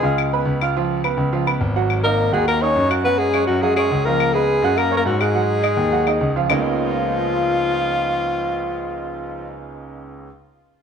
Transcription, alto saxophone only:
Already playing: G#4
2.04 A#4
2.33 G#4
2.48 A#4
2.62 C#5
3.04 B4
3.18 G#4
3.47 F#4
3.62 G#4
3.76 G#4
4.05 A#4
4.34 G#4
4.78 A#4
4.97 A#4
5.06 F#4
5.21 G#4
6.50 F4

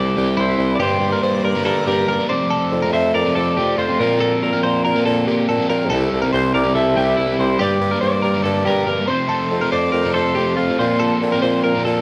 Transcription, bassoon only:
Already playing: C2
0.17 C2
0.38 C2
0.58 C2
0.79 G2
1.00 G2
1.22 G2
1.44 G2
1.65 G2
1.86 G2
2.07 G2
2.72 F2
2.93 F2
3.14 F2
3.36 F2
3.56 F2
3.78 F2
4.00 A#2
4.42 A#2
4.64 A#2
4.85 A#2
5.06 A#2
5.27 A#2
5.49 A#2
5.70 A#2
5.91 C2
6.12 C2
6.34 C2
6.54 C2
6.75 C2
6.97 C2
7.18 C2
7.38 C2
7.60 G2
7.80 G2
8.02 G2
8.23 G2
8.44 G2
8.65 G2
8.87 G2
9.51 F2
9.72 F2
9.93 F2
10.15 F2
10.36 F2
10.57 F2
10.79 A#2
11.21 A#2
11.43 A#2
11.64 A#2
11.86 A#2

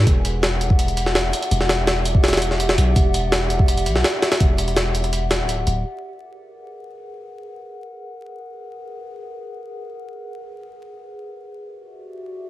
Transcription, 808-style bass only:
0.07 E1
1.51 E1
2.78 B1
2.96 E1
3.86 B1
4.40 E1
5.40 D1
5.67 D1

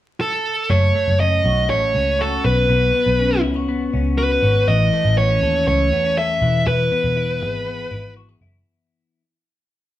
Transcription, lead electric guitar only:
0.21 A4
0.70 C#5
1.20 D#5
1.70 C#5
2.21 A4
2.46 B4
4.18 B4
4.68 D#5
5.18 C#5
5.68 C#5
6.18 E5
6.68 B4

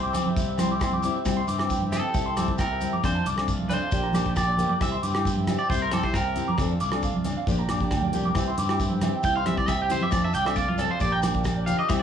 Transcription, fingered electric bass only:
Already playing: C2
0.37 C2
1.26 C2
1.48 G2
2.14 C2
3.04 F2
3.25 C2
3.92 A#1
4.81 C2
5.04 G2
5.70 C2
6.58 F2
6.82 C2
7.47 A#1
7.92 D2
8.14 C2
8.36 C2
8.58 G2
9.24 C2
10.13 F2
10.35 C2
11.01 A#1
11.90 C2

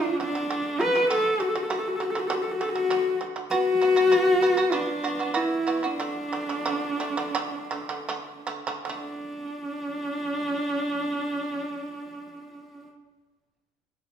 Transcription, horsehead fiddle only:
Already playing: D4
0.21 D4
0.81 B4
1.10 A4
1.41 F#4
1.49 A4
1.56 F#4
1.63 A4
1.71 F#4
1.79 A4
1.88 F#4
1.96 A4
2.02 F#4
2.11 A4
2.18 F#4
2.27 A4
2.33 F#4
2.42 A4
2.51 F#4
2.61 A4
2.69 F#4
3.50 F#4
4.74 D4
5.36 E4
5.85 D4
8.89 D4

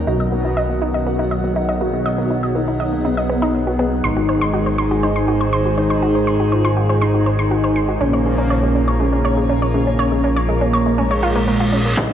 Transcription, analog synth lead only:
0.07 F#4
1.06 F#4
1.81 F#4
2.55 D#4
3.05 B3
4.04 D#4
5.03 D#4
5.78 D#4
6.52 F4
7.02 D#4
8.01 C#4
9.00 C#4
9.74 C#4
10.48 A#3
10.98 G#3
11.97 D#4

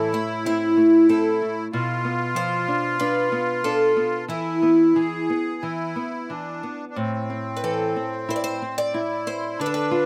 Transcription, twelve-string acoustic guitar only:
Already playing: A4
0.14 E4
0.46 E4
1.09 A4
2.36 C5
3.00 B4
3.64 A4
4.30 E4
7.57 B4
7.64 A4
8.30 C5
8.36 D5
8.44 C5
8.78 D5
9.27 C5
9.61 B4
9.66 A4
9.74 B4

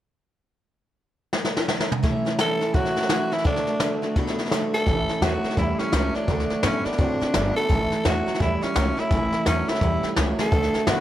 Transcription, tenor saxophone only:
2.41 A4
2.74 F#4
3.33 E4
3.46 D4
4.74 A4
5.23 F#4
5.58 E4
5.79 C#4
6.15 D4
6.65 C#4
6.85 D4
7.57 A4
8.06 F#4
8.41 E4
8.63 C#4
9.00 E4
9.47 C#4
9.69 E4
10.41 A4
10.89 F#4

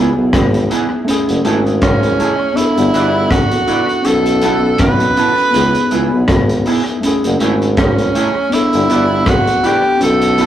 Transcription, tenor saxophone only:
1.82 C#4
2.56 E4
3.31 F#4
4.05 A4
4.80 B4
7.79 C#4
8.54 E4
9.28 F#4
9.66 G4
10.03 A4

